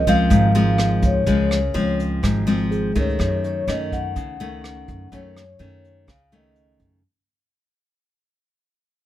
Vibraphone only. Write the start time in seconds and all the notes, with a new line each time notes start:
0.09 F5
1.06 C#5
2.99 C#5
3.46 C#5
3.69 D#5
3.93 F#5
5.14 C#5
6.10 F5
6.36 D#5